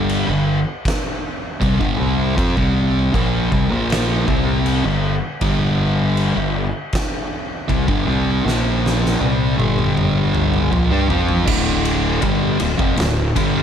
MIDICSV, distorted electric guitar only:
0, 0, Header, 1, 2, 480
1, 0, Start_track
1, 0, Tempo, 758534
1, 1499, Time_signature, 4, 2, 24, 8
1, 8623, End_track
2, 0, Start_track
2, 0, Title_t, "Distorted electric guitar"
2, 0, Program_c, 0, 30
2, 0, Note_on_c, 0, 43, 90
2, 0, Note_on_c, 0, 50, 93
2, 0, Note_on_c, 0, 55, 114
2, 166, Note_off_c, 0, 43, 0
2, 168, Note_off_c, 0, 50, 0
2, 168, Note_off_c, 0, 55, 0
2, 175, Note_on_c, 0, 43, 50
2, 181, Note_on_c, 0, 50, 66
2, 368, Note_off_c, 0, 43, 0
2, 370, Note_off_c, 0, 50, 0
2, 1015, Note_on_c, 0, 48, 80
2, 1021, Note_on_c, 0, 55, 99
2, 1129, Note_off_c, 0, 48, 0
2, 1132, Note_off_c, 0, 55, 0
2, 1137, Note_on_c, 0, 43, 90
2, 1140, Note_on_c, 0, 50, 110
2, 1251, Note_off_c, 0, 43, 0
2, 1252, Note_off_c, 0, 50, 0
2, 1256, Note_on_c, 0, 48, 91
2, 1260, Note_on_c, 0, 55, 108
2, 1265, Note_on_c, 0, 60, 98
2, 1491, Note_off_c, 0, 48, 0
2, 1493, Note_off_c, 0, 55, 0
2, 1495, Note_off_c, 0, 60, 0
2, 1497, Note_on_c, 0, 53, 99
2, 1503, Note_on_c, 0, 60, 92
2, 1611, Note_off_c, 0, 53, 0
2, 1614, Note_off_c, 0, 60, 0
2, 1625, Note_on_c, 0, 48, 95
2, 1629, Note_on_c, 0, 55, 85
2, 1631, Note_on_c, 0, 60, 85
2, 1976, Note_off_c, 0, 48, 0
2, 1978, Note_off_c, 0, 55, 0
2, 1979, Note_off_c, 0, 60, 0
2, 1982, Note_on_c, 0, 46, 97
2, 1987, Note_on_c, 0, 53, 98
2, 1991, Note_on_c, 0, 58, 107
2, 2215, Note_off_c, 0, 46, 0
2, 2217, Note_off_c, 0, 53, 0
2, 2220, Note_off_c, 0, 58, 0
2, 2226, Note_on_c, 0, 48, 94
2, 2232, Note_on_c, 0, 55, 107
2, 2336, Note_off_c, 0, 48, 0
2, 2338, Note_on_c, 0, 46, 81
2, 2340, Note_off_c, 0, 55, 0
2, 2345, Note_on_c, 0, 53, 92
2, 2347, Note_on_c, 0, 58, 93
2, 2694, Note_off_c, 0, 46, 0
2, 2697, Note_off_c, 0, 53, 0
2, 2698, Note_off_c, 0, 58, 0
2, 2706, Note_on_c, 0, 48, 89
2, 2710, Note_on_c, 0, 55, 87
2, 2715, Note_on_c, 0, 60, 93
2, 3058, Note_off_c, 0, 48, 0
2, 3060, Note_off_c, 0, 55, 0
2, 3063, Note_off_c, 0, 60, 0
2, 3068, Note_on_c, 0, 43, 63
2, 3071, Note_on_c, 0, 50, 71
2, 3258, Note_off_c, 0, 43, 0
2, 3260, Note_off_c, 0, 50, 0
2, 3429, Note_on_c, 0, 43, 91
2, 3432, Note_on_c, 0, 50, 105
2, 3434, Note_on_c, 0, 55, 106
2, 4015, Note_off_c, 0, 43, 0
2, 4017, Note_off_c, 0, 50, 0
2, 4022, Note_on_c, 0, 43, 64
2, 4023, Note_off_c, 0, 55, 0
2, 4025, Note_on_c, 0, 50, 57
2, 4216, Note_off_c, 0, 43, 0
2, 4217, Note_off_c, 0, 50, 0
2, 4866, Note_on_c, 0, 48, 84
2, 4870, Note_on_c, 0, 55, 100
2, 4979, Note_off_c, 0, 48, 0
2, 4981, Note_off_c, 0, 55, 0
2, 4989, Note_on_c, 0, 43, 93
2, 4993, Note_on_c, 0, 50, 101
2, 5100, Note_off_c, 0, 43, 0
2, 5102, Note_off_c, 0, 50, 0
2, 5107, Note_on_c, 0, 48, 90
2, 5111, Note_on_c, 0, 55, 87
2, 5114, Note_on_c, 0, 60, 94
2, 5339, Note_off_c, 0, 48, 0
2, 5341, Note_off_c, 0, 55, 0
2, 5343, Note_off_c, 0, 60, 0
2, 5345, Note_on_c, 0, 46, 84
2, 5348, Note_on_c, 0, 53, 97
2, 5351, Note_on_c, 0, 58, 101
2, 5818, Note_off_c, 0, 46, 0
2, 5819, Note_off_c, 0, 53, 0
2, 5821, Note_off_c, 0, 58, 0
2, 5823, Note_on_c, 0, 48, 92
2, 5825, Note_on_c, 0, 55, 101
2, 5828, Note_on_c, 0, 60, 109
2, 6055, Note_off_c, 0, 55, 0
2, 6056, Note_off_c, 0, 48, 0
2, 6058, Note_on_c, 0, 43, 86
2, 6059, Note_off_c, 0, 60, 0
2, 6061, Note_on_c, 0, 50, 95
2, 6063, Note_on_c, 0, 55, 97
2, 6773, Note_off_c, 0, 43, 0
2, 6774, Note_off_c, 0, 50, 0
2, 6775, Note_off_c, 0, 55, 0
2, 6778, Note_on_c, 0, 46, 78
2, 6786, Note_on_c, 0, 53, 104
2, 6893, Note_off_c, 0, 46, 0
2, 6897, Note_off_c, 0, 53, 0
2, 6899, Note_on_c, 0, 55, 81
2, 6906, Note_on_c, 0, 62, 105
2, 7013, Note_off_c, 0, 55, 0
2, 7013, Note_on_c, 0, 53, 98
2, 7016, Note_off_c, 0, 62, 0
2, 7019, Note_on_c, 0, 60, 87
2, 7022, Note_on_c, 0, 65, 108
2, 7250, Note_off_c, 0, 53, 0
2, 7252, Note_off_c, 0, 60, 0
2, 7253, Note_on_c, 0, 38, 87
2, 7254, Note_off_c, 0, 65, 0
2, 7255, Note_on_c, 0, 45, 88
2, 7259, Note_on_c, 0, 50, 93
2, 7727, Note_off_c, 0, 38, 0
2, 7727, Note_off_c, 0, 50, 0
2, 7729, Note_off_c, 0, 45, 0
2, 7731, Note_on_c, 0, 43, 88
2, 7734, Note_on_c, 0, 50, 107
2, 7737, Note_on_c, 0, 55, 111
2, 7966, Note_off_c, 0, 43, 0
2, 7967, Note_off_c, 0, 50, 0
2, 7969, Note_off_c, 0, 55, 0
2, 7969, Note_on_c, 0, 38, 66
2, 7970, Note_on_c, 0, 45, 79
2, 8085, Note_off_c, 0, 38, 0
2, 8087, Note_on_c, 0, 41, 85
2, 8089, Note_off_c, 0, 45, 0
2, 8092, Note_on_c, 0, 48, 101
2, 8204, Note_off_c, 0, 41, 0
2, 8206, Note_off_c, 0, 48, 0
2, 8210, Note_on_c, 0, 38, 59
2, 8213, Note_on_c, 0, 45, 69
2, 8403, Note_off_c, 0, 38, 0
2, 8405, Note_off_c, 0, 45, 0
2, 8449, Note_on_c, 0, 43, 83
2, 8452, Note_on_c, 0, 50, 94
2, 8456, Note_on_c, 0, 55, 113
2, 8623, Note_off_c, 0, 43, 0
2, 8623, Note_off_c, 0, 50, 0
2, 8623, Note_off_c, 0, 55, 0
2, 8623, End_track
0, 0, End_of_file